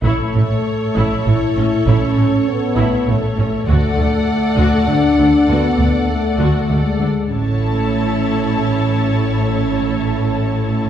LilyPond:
<<
  \new Staff \with { instrumentName = "Violin section" } { \time 3/4 \key a \major \tempo 4 = 99 cis''2.~ | cis''2. | <d'' fis''>2.~ | <d'' fis''>2~ <d'' fis''>8 r8 |
<cis'' a''>2.~ | <cis'' a''>2. | }
  \new Staff \with { instrumentName = "Viola section" } { \time 3/4 \key a \major << { a'2.~ | a'2. | a'2.~ | a'2~ a'8 r8 |
a'2.~ | a'2. | } \\ { e'8 a8 r8 e'8 a8 cis'8 | e'8 a8 r8 e'8 a8 cis'8 | fis'8 a8 r8 fis'8 a8 d'8 | fis'8 a8 r8 fis'8 a8 d'8 |
e'2.~ | e'2. | } >> }
  \new Staff \with { instrumentName = "French horn section" } { \time 3/4 \key a \major a2 e'4 | cis'4 b4 a4 | a2 d'4 | b4 a4 gis4 |
cis'2.~ | cis'2. | }
  \new Staff \with { instrumentName = "Cello section" } { \clef bass \time 3/4 \key a \major a,8 a,8 r8 a,8 a,8 a,8 | a,8 a,8 r8 a,8 a,8 a,8 | d,8 d,8 r8 d,8 d,8 d,8 | d,8 d,8 r8 d,8 d,8 d,8 |
a,2.~ | a,2. | }
  \new Staff \with { instrumentName = "Double bass section" } { \clef bass \time 3/4 \key a \major a,,8 a,,8 r8 a,,8 a,,8 a,,8 | a,,8 a,,8 r8 a,,8 a,,8 a,,8 | d,8 d,8 r8 d,8 d,8 d,8 | d,8 d,8 r8 d,8 d,8 d,8 |
a,,2.~ | a,,2. | }
>>